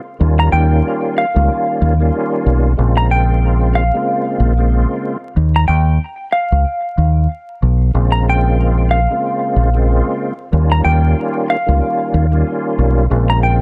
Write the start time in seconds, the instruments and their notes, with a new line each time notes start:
Already playing: clean electric guitar F5
0.20 fingered electric bass D#2, tonewheel organ D#3 G3 A#3 C#4 F4
0.39 clean electric guitar A#5
0.52 fingered electric bass D#2, clean electric guitar G5
1.18 clean electric guitar F5
1.34 fingered electric bass C#2, tonewheel organ D#3 G3 A#3 C#4 F4
1.82 fingered electric bass D#2
1.99 tonewheel organ D#3 G3 A#3 C#4 F4
2.46 fingered electric bass B1
2.77 fingered electric bass A#1, tonewheel organ C#3 G#3 A#3 C4 F4
2.97 clean electric guitar A#5
3.11 clean electric guitar G5
3.75 clean electric guitar F5
3.94 tonewheel organ C#3 G#3 A#3 C4 F4
4.40 fingered electric bass A#1
4.58 tonewheel organ C#3 G#3 A#3 C4 F4
5.37 fingered electric bass D#2
5.56 clean electric guitar A#5
5.68 fingered electric bass D#2, clean electric guitar G5
6.32 clean electric guitar F5
6.52 fingered electric bass C#2
6.98 fingered electric bass D#2
7.63 fingered electric bass B1
7.93 fingered electric bass A#1, tonewheel organ C#3 G#3 A#3 C4 F4
8.12 clean electric guitar A#5
8.29 clean electric guitar G5
8.91 clean electric guitar F5
9.10 tonewheel organ C#3 G#3 A#3 C4 F4
9.56 fingered electric bass A#1
9.74 tonewheel organ C#3 G#3 A#3 C4 F4
10.52 fingered electric bass D#2, tonewheel organ D#3 G3 A#3 C#4 F4
10.72 clean electric guitar A#5
10.85 fingered electric bass D#2, clean electric guitar G5
11.50 clean electric guitar F5
11.66 fingered electric bass C#2, tonewheel organ D#3 G3 A#3 C#4 F4
12.14 fingered electric bass D#2
12.32 tonewheel organ D#3 G3 A#3 C#4 F4
12.79 fingered electric bass B1
13.10 fingered electric bass A#1, tonewheel organ C#3 G#3 A#3 C4 F4
13.30 clean electric guitar A#5
13.43 clean electric guitar G5